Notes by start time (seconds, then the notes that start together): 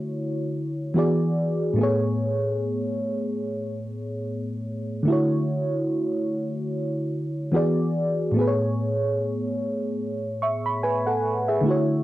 Already playing: D3 A3 E4 F#4 C#5
0.94 E3 B3 F#4 G#4
0.99 D5
1.74 A2 A3
1.79 B3 G#4
1.83 C#5
5.03 D3 A3
5.08 E4 F#4
5.12 C#5
7.52 E3 B3 F#4 G#4
7.56 D5
8.32 A2 A3
8.36 B3 G#4
8.41 B4
8.47 C#5
10.42 E5 C#6
10.66 B5
10.83 B4 G#5
11.07 A4 F#5
11.48 G#4 E5
11.61 D3 A3
11.66 E4 F#4
11.70 C#5